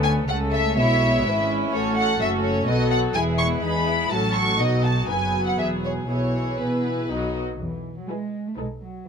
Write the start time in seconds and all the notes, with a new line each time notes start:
Already playing: D2 D3 A3 B3 C#4 A4
0.04 G#5
0.28 C#2 C#3 A3 C#4 A4 F#5
0.53 E5
0.75 B1 B2 G#3 E4 C#5 E5
1.01 E4
1.24 G#1 G#2 C#4 B4
1.71 A1 A2 A3 F#4 A4 C#5
1.97 F#5
2.20 F#1 F#2 A3 C#4 F#4 E5
2.44 C#5
2.67 B1 B2 F#3 B3 F#4 A4 D#5
2.91 F#5
3.14 E1 E2 G#3 B3 E4 G#4 G#5
3.39 C#6
3.62 E2 E3 D#4 G#4 B5
3.86 E4
4.10 A1 A2 F#3 C#4 F#4 A4 A5
4.35 C#6
4.59 B1 B2 F#3 D#4 F#4 D#5
4.83 A5
5.07 F#1 F#2 B3 B4 G#5
5.47 F#5
5.58 E1 E2 G#4 E5
5.85 C#5
6.09 B1 B2 E3 E4 G#4 C#5
6.59 B2 B3 B4
7.09 B1 B2 F#3 D#4 F#4 D#5
7.60 E2 E3
7.98 F#3
8.09 G#3 E4 G#4 B4
8.47 A3
8.57 B1 G#3 D#4 A4 B4
8.81 F#3